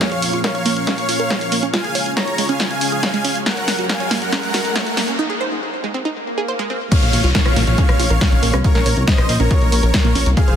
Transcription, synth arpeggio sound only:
0.01 0.05 A#3 medium
0.12 0.19 C#5 medium
0.33 0.38 F4 medium
0.44 0.51 A#4 medium
0.55 0.65 C#5 medium
0.66 0.73 A#3 loud
0.87 0.94 C#4 loud
1.09 1.13 F4 medium
1.20 1.24 A#4 medium
1.30 1.37 C#5 medium
1.52 1.59 A#3 loud
1.63 1.67 C#4 medium
1.73 1.81 F4 loud
1.84 1.91 G#4 medium
1.95 1.99 C#5 medium
2.38 2.45 G#3 medium
2.49 2.53 C#4 medium
2.60 2.64 F4 medium
2.92 2.97 G#4 medium
3.03 3.07 C#5 medium
3.14 3.24 G#3 loud
3.25 3.32 C#4 medium
3.46 3.50 A#3 medium
3.57 3.64 C#5 medium
3.79 3.83 F#4 medium
3.89 3.96 A#4 medium
4.00 4.11 C#5 medium
4.11 4.18 A#3 loud
4.33 4.40 C#4 loud
4.54 4.58 F#4 medium
4.65 4.69 A#4 medium
4.76 4.83 C#5 medium
4.97 5.04 A#3 loud
5.08 5.12 C#4 medium
5.19 5.26 D#4 loud
5.30 5.37 G#4 medium
5.41 5.45 C5 medium
5.84 5.91 G#3 medium
5.94 5.99 C4 medium
6.05 6.09 D#4 medium
6.38 6.42 G#4 medium
6.48 6.53 C5 medium
6.59 6.69 G#3 loud
6.70 6.77 C4 medium
6.92 6.96 A#3 medium
7.02 7.09 C#5 medium
7.24 7.28 F4 medium
7.35 7.42 A#4 medium
7.46 7.56 C#5 medium
7.56 7.63 A#3 loud
7.78 7.85 C#4 loud
8.00 8.04 F4 medium
8.10 8.15 A#4 medium
8.21 8.28 C#5 medium
8.43 8.50 A#3 loud
8.53 8.58 C#4 medium
8.64 8.71 F4 loud
8.75 8.82 A#4 medium
8.86 8.90 C#5 medium
9.29 9.36 A#3 medium
9.40 9.44 C#4 medium
9.51 9.55 F4 medium
9.83 9.87 A#4 medium
9.94 9.98 C#5 medium
10.05 10.15 A#3 loud
10.15 10.22 C#4 medium
10.37 10.41 G#3 medium
10.48 10.55 C5 medium

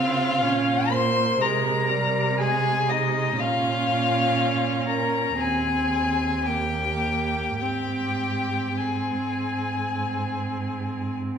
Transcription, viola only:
0.00 0.44 C4 medium
0.43 0.93 C#4 medium
0.91 1.42 A#3 medium
1.40 1.92 G#3 soft
1.90 2.41 G3 medium
2.40 3.38 G#3 soft
3.39 5.36 C#4 soft
5.40 6.49 C4 soft
6.47 7.63 A#3 soft
7.62 8.79 C4 soft
8.80 11.38 C4 soft

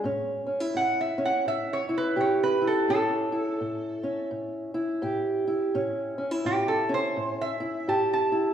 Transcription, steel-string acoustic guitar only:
0.04 0.70 A2 medium
0.04 0.46 C#4 medium
0.46 0.60 C#4 soft
0.60 1.88 E4 medium
0.74 1.40 A2 medium
1.18 2.89 C#4 medium
1.46 2.12 A2 medium
1.89 2.61 E4 medium
2.16 2.82 A2 medium
2.16 2.91 G4 medium
2.61 3.32 E4 medium
2.88 3.54 A2 medium
2.88 4.03 C#4 medium
3.32 4.74 E4 medium
3.60 4.26 A2 medium
4.03 5.75 C#4 medium
4.31 4.97 A2 medium
4.74 5.47 E4 medium
5.02 5.68 A2 medium
5.02 5.77 G4 medium
5.47 6.18 E4 medium
5.74 6.40 A2 medium
5.74 6.18 C#4 medium
6.18 6.31 C#4 medium
6.31 7.59 E4 medium
6.45 7.10 A2 medium
6.89 8.54 C#4 medium
7.16 7.82 A2 medium
7.60 8.31 E4 medium
7.88 8.53 A2 medium
7.88 8.54 G4 medium
8.32 8.54 E4 medium

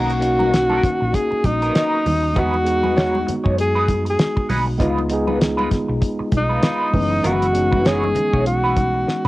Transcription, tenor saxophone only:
0.00 1.16 F#4 loud
1.15 1.47 G#4 loud
1.45 2.40 D#4 medium
2.39 3.33 F#4 loud
3.61 4.04 G#4 loud
4.10 4.49 G#4 medium
6.37 7.28 D#4 medium
7.26 7.88 F#4 loud
7.87 8.46 G#4 medium
8.47 9.28 F#4 medium

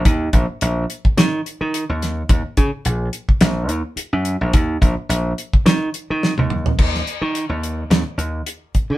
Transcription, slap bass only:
0.05 0.28 D#2 loud
0.33 0.45 A#1 loud
0.62 0.84 A#1 loud
1.17 1.40 D#3 loud
1.61 1.83 D#3 medium
1.89 2.22 D#2 medium
2.29 2.42 D#2 medium
2.57 2.70 C#3 loud
2.85 3.08 A#1 loud
3.41 3.69 A#1 medium
3.69 3.82 D#2 medium
3.96 muted slap bass stroke soft
4.13 4.36 F#2 medium
4.41 4.51 A#1 medium
4.54 4.76 D#2 medium
4.81 4.94 A#1 loud
4.97 muted slap bass stroke soft
5.09 5.32 A#1 loud
5.66 5.89 D#3 loud
6.10 6.33 D#3 medium
6.39 6.71 D#2 medium
6.79 7.01 D#2 medium
7.21 7.44 D#3 medium
7.49 7.83 D#2 medium
7.90 8.03 D#2 loud
8.18 8.41 D#2 medium
8.75 muted slap bass stroke soft
8.90 8.98 D#3 medium

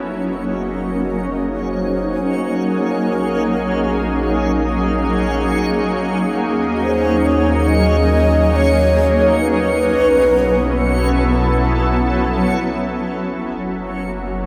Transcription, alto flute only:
0.01 0.35 F#4 medium
0.33 0.44 A#4 medium
0.42 0.86 G#4 medium
0.85 1.28 A#4 medium
1.27 1.73 C#5 medium
1.71 2.57 C5 loud
2.56 3.87 A#4 loud
3.85 4.70 G#4 medium
6.83 7.27 C5 loud
7.25 7.69 C#5 medium
7.68 8.57 D#5 loud
8.56 9.40 C#5 loud
9.41 11.11 B4 loud

